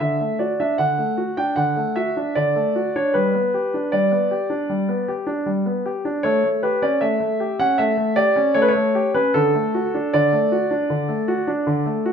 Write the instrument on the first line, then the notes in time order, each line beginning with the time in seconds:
grand piano
0.00 D3 E5
0.20 A3
0.39 F#4 D5
0.60 D4 E5
0.78 D3 F#5
0.98 A3
1.18 F#4
1.37 D4 G5
1.56 D3 F#5
1.76 A3
1.96 F#4 E5
2.17 D4
2.35 D3 D5
2.56 A3
2.76 F#4
2.96 D4 C#5
3.14 G3 B4
3.35 B3
3.54 G4
3.74 D4
3.92 G3 D5
4.12 B3
4.31 G4
4.50 D4
4.69 G3
4.89 B3
5.08 G4
5.27 D4
5.46 G3
5.66 B3
5.86 G4
6.05 D4
6.23 A3 C#5
6.44 A3
6.63 G4 B4
6.82 C#4 D5
7.01 A3 E5
7.20 A3
7.40 G4
7.59 C#4 F#5
7.78 A3 E5
7.97 A3
8.16 G4 D5
8.36 C#4
8.54 A3 C#5
8.62 B4
8.68 C#5
8.75 A3
8.95 G4
9.14 C#4 B4
9.34 D3 A4
9.55 A3
9.74 F#4
9.94 D4
10.13 D3 D5
10.33 A3
10.52 F#4
10.71 D4
10.90 D3
11.09 A3
11.28 F#4
11.47 D4
11.67 D3
11.86 A3
12.06 F#4